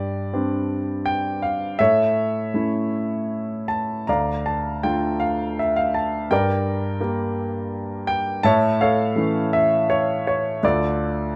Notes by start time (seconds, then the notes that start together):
Already playing: G2 G4 D5
0.33 G3 C4 D4
1.06 G5
1.42 F5
1.79 A2 A4 C#5 E5
2.54 A3 C#4 E4
3.68 A5
4.07 D2 D5 F5 A#5
4.46 A5
4.83 A3 D4 F4 G5
5.20 F5
5.59 E5
5.76 F5
5.94 A5
6.31 G2 A#4 D5 G5
7.01 A#3 G4 A#4
8.07 G5
8.43 A2 C#5 E5 A5
8.81 A4 C#5 F5
9.16 E3 A3 C#4
9.53 E5
9.90 C#5
10.27 C#5
10.63 D2 F4 A4 D5